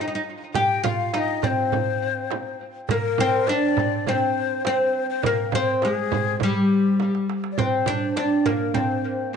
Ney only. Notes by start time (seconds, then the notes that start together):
Already playing: D#5
0.55 G5
0.85 F5
1.14 F5
1.18 D#5
1.43 C5 D5
2.89 A#4
3.48 D#5
3.52 D5
4.08 C5
4.66 C5
5.10 C5
5.23 A#4
5.52 C5
5.82 G#4
6.41 G4
7.52 D5
7.58 C5
8.17 D5 D#5
8.47 A#4
8.76 D5
8.81 C5